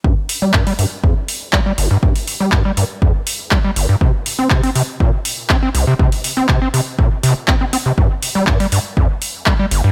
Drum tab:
HH |--o--oo---o---o-|-oo---o---o---o-|--o--oo---o---o-|-oo---o---o---o-|
CP |----x-------x---|----x-------x---|----x-------x---|----x-------x---|
BD |o---o---o---o---|o---o---o---o---|o---o---o---o---|o---o---o---o---|

HH |--o--oo---o---o-|
CP |----x-------x---|
BD |o---o---o---o---|